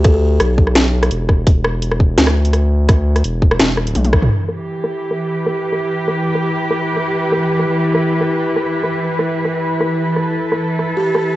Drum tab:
HH |x---x---x--xx---|x---x---x--xx---|x--xx---x--xxx--|----x-----------|
SD |r---r--ro--r--r-|--r--r--or--r---|r--r---ro-r---r-|--r---r--r---r--|
T1 |----------------|----------------|------------oo--|----------------|
T2 |----------------|----------------|---------------o|----------------|
BD |o-----o-------o-|o-----o---------|o-----o-------o-|----------------|

HH |----------------|x-------x-------|--------x--xx---|x---x---x---x---|
SD |r---r--r---r--r-|--r--r---r--r---|r--r---r--r---r-|--r---r--r---r--|
T1 |----------------|----------------|----------------|----------------|
T2 |----------------|----------------|----------------|----------------|
BD |----------------|----------------|----------------|----------------|